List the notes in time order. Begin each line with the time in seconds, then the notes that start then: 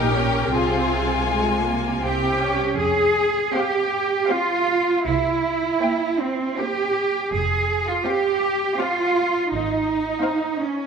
Already playing: A#1 A#2 D#4 G4 A#4 G5
0.14 C#4
0.51 C2 C3 C4 F4 G#4 G#5
1.28 G#3
1.65 A#3
2.02 C2 C3 C4 G4 G5
2.40 C#4
2.78 F2 G#4
3.53 C4 G4 C5 F5
4.29 C4 F4 C5 F5
5.06 C2 E4
5.81 A#3 C5 G5
6.21 C4
6.60 A#3 G4 C5 G5
7.33 F1 G#4
7.89 F4
8.06 C4 G4 C5 F5
8.79 C4 F4 C5 F5
9.51 G#1 D#4
10.23 C4 C5 F5
10.59 C#4